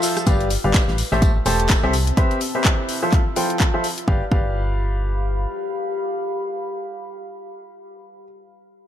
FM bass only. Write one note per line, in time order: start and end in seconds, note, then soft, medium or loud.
0.27 0.57 G1 loud
0.64 0.79 G1 loud
0.88 1.03 A1 medium
1.12 1.40 A1 medium
1.46 1.76 E1 medium
1.83 2.12 C2 loud
4.08 4.22 G1 loud
4.32 5.47 G1 medium